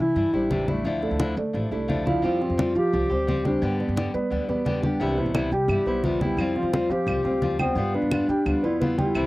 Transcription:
0.00 C3 E3 E4 E5
0.16 G2 E3 G3 D4 E4, high conga
0.33 A1 G3 D4 E4 G4 C5, high conga
0.50 C3 E3 G3 D4 E4 G4 C5, high conga
0.68 G3 A3 D4 E4 E5, high conga
0.84 D2 D3 F3 A3 D4 E4, high conga
1.02 A3 A4 D5, high conga
1.11 D2
1.19 D3 F3 A3 D4 E4, high conga
1.36 D3 A3 A4 D5, muted nylon-string guitar stroke, high conga
1.53 A1 F3 A3 D4 E4, high conga
1.71 C2 A3 D4 E4 A4 D5, high conga
1.88 D3 F3 A3 D4 E4, high conga
2.06 F3 A3 D4 E4 F4 F5, high conga
2.22 F2 F3 G3 C4 F4 G4 F5, high conga
2.41 C4 F4 C5, high conga
2.50 F2
2.58 F3 G3 C4 F4 G4, high conga
2.75 F3 F4 G4 F5, muted nylon-string guitar stroke, high conga
2.93 C2 F3 G3 C4 G4, high conga
3.10 D2 G3 C4 G4 C5, high conga
3.27 F3 G3 C4 G4 C5, high conga
3.44 G3 C4 D4 G4 G5, high conga
3.62 G2 D3 G3 B3 G4, high conga
3.80 B3 B4 D5, high conga
3.88 G2
3.96 D3 G3 B3 G4, high conga
4.14 G3 B3 B4 D5, muted nylon-string guitar stroke, high conga
4.30 D2 D3 G3 B3 G4, high conga
4.49 E2 G3 B3 G4 B4 D5, high conga
4.65 D3 G3 B3 G4, high conga
4.82 G3 B3 D4 G4 G5, high conga
5.00 C2 C3 E3 G3 B3 E4 G4 G5, high conga
5.17 B2 E4 B4 C5, high conga
5.26 C2
5.34 C3 E3 G3 B3 E4, high conga, claves
5.51 C3 G3 G4 G5, muted nylon-string guitar stroke, high conga
5.68 G2 E3 G3 B3 E4, high conga, claves
5.86 B1 G3 B3 E4 B4 C5, high conga
6.04 C3 E3 G3 B3 E4 F4 B4 C5, high conga
6.21 G3 B3 E4 G4 G5, high conga
6.37 F2 F3 G3 C4 F4, high conga, claves
6.55 C4 F4 C5 F5, high conga
6.63 F2
6.73 F3 G3 C4 F4, high conga
6.89 F3 C4 G4 C5 F5, muted nylon-string guitar stroke, high conga
7.07 C2 F3 G3 C4 F4, high conga, claves
7.24 D2 G3 C4 F4 C5 F5, high conga
7.42 F3 G3 C4 F4, high conga
7.59 G3 B3 C4 F4 G4 G5, high conga, claves
7.75 G2 G3 B3 F4 G4 G5, high conga
7.94 B3 D4 B4 D5, high conga
8.02 G2
8.11 G3 B3 F4, high conga, claves
8.28 G3 G4 G5, muted nylon-string guitar stroke, high conga
8.46 D2 G3 B3 D4 F4, high conga, claves
8.63 F2 B3 E4 F4 B4 D5, high conga
8.80 G3 B3 F4 B4 D5, high conga
8.98 G3 B3 E4 F4 G4 G5, high conga
9.15 C2 C3 E3 A3 C4 E4, high conga, claves

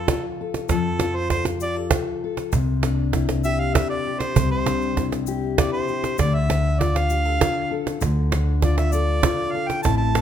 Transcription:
Already playing: F3 A4
0.08 F4, cajon bass, cajon slap
0.41 A4
0.54 cajon slap
0.69 F2 F3 A4, cajon bass, cajon slap, shaker
1.00 F4, cajon slap
1.16 C5
1.30 A4 C5, cajon bass, cajon slap
1.45 cajon slap
1.60 G4 D5, shaker
1.76 A4
1.91 A4, cajon bass, cajon slap
2.24 A4
2.37 cajon slap
2.52 C2 C3, cajon bass, cajon slap, shaker
2.83 D4, cajon slap
3.13 E4, cajon bass, cajon slap
3.29 cajon slap
3.44 G4 E5, shaker
3.60 F5
3.74 E4 E5, cajon bass, cajon slap
3.90 D5
4.06 G4
4.19 C5, cajon slap
4.36 C2 C3, cajon bass, shaker
4.51 C5
4.66 D4, cajon slap
4.82 shaker
4.97 E4, cajon bass, cajon slap, shaker
5.12 cajon slap, shaker
5.27 G4, shaker
5.58 E4 D5, cajon bass, cajon slap
5.72 C5
5.88 G4, shaker
6.04 cajon slap
6.18 D2 D3 D5, cajon bass, cajon slap, shaker
6.34 E5
6.49 D4, cajon slap
6.80 F4 D5, cajon bass, cajon slap
6.96 F5, cajon slap
7.10 G4, shaker
7.25 A4
7.41 F4, cajon bass, cajon slap
7.71 A4
7.87 cajon slap
8.01 D2 D3, cajon bass, cajon slap, shaker
8.32 D4, cajon slap
8.62 F4 D5, cajon bass, cajon slap
8.78 E5, cajon slap
8.92 A4 D5, shaker
9.23 F4, cajon bass, cajon slap
9.52 A4 F5
9.68 G5, cajon slap
9.83 A1 A2 A3 C4 E4 A5, cajon bass, cajon slap, shaker
9.87 A4
9.97 A5
10.15 C4, cajon slap

